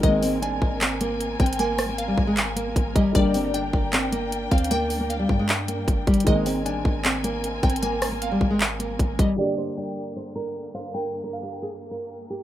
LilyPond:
<<
  \new Staff \with { instrumentName = "Synth pluck" } { \time 4/4 \key g \phrygian \tempo 4 = 154 ees''4 aes''2~ aes''8 g''8 | aes''4 f''2~ f''8 ees''8 | d''4 g''2~ g''8 f''8 | g''4 f''2. |
ees''4 aes''2~ aes''8 g''8 | aes''4 f''2~ f''8 ees''8 | d''4 g''2~ g''8 f''8 | g''4 f''2. | }
  \new Staff \with { instrumentName = "String section" } { \time 4/4 \key g \phrygian << { <c' aes''>1~ | <c' aes''>1 | <d' g''>1~ | <d' g''>1 |
<c' aes''>1~ | <c' aes''>1 | <g, bes>1~ | <g, bes>1 | } \\ { bes'1~ | bes'1~ | bes'1~ | bes'1 |
bes'1~ | bes'1 | d1~ | d1 | } >> }
  \new Staff \with { instrumentName = "Nylon-string guitar" } { \time 4/4 \key g \phrygian aes8 c'8 d'4 c'8 bes4 c'8 | bes8. bes8 g8 aes16 r8 bes4 g8 | g8 c'8 d'4 c'8 bes4 c'8 | bes8. bes8 g8 aes16 r8 bes4 g8 |
aes8 c'8 d'4 c'8 bes4 c'8 | bes8. bes8 g8 aes16 r8 bes4 g8 | g'8 c''8 d''4 c''8 bes'4 c''8 | bes'8. bes'8 g'8 aes'16 r8 bes'4 g'8 | }
  \new Staff \with { instrumentName = "Grand piano" } { \time 4/4 \key g \phrygian <ees aes bes c'>1~ | <ees aes bes c'>1 | <d g bes d' g'>1~ | <d g bes d' g'>1 |
<ees aes bes c'>1~ | <ees aes bes c'>1 | <d g bes d' g'>1~ | <d g bes d' g'>1 | }
  \new Staff \with { instrumentName = "808-style bass" } { \clef bass \time 4/4 \key g \phrygian aes,,4. aes,,2 aes,,8~ | aes,,4. aes,,4. aes,,8 aes,,8 | g,,4. g,,2 d,8~ | d,4. g,4. g,,8 g,,8 |
aes,,4. aes,,2 aes,,8~ | aes,,4. aes,,4. aes,,8 aes,,8 | r1 | r1 | }
  \new DrumStaff \with { instrumentName = "Drums" } \drummode { \time 4/4 <hh bd>8 hho8 hh8 bd8 <hc hh>8 hh8 \tuplet 3/2 { hh16 r16 r16 <hh bd>16 hh16 hh16 } | hh8 <hho ss>8 hh8 bd8 <hc hh>8 hh8 <hh bd>8 <hh bd>8 | <hh bd>8 hho8 hh8 bd8 <hc hh>8 hh8 \tuplet 3/2 { hh16 r16 r16 <hh bd>16 hh16 hh16 } | hh8 hho8 hh8 bd8 <hc hh>8 hh8 \tuplet 3/2 { <hh bd>16 r16 r16 <hh bd>16 hh16 hh16 } |
<hh bd>8 hho8 hh8 bd8 <hc hh>8 hh8 \tuplet 3/2 { hh16 r16 r16 <hh bd>16 hh16 hh16 } | hh8 <hho ss>8 hh8 bd8 <hc hh>8 hh8 <hh bd>8 <hh bd>8 | r4 r4 r4 r4 | r4 r4 r4 r4 | }
>>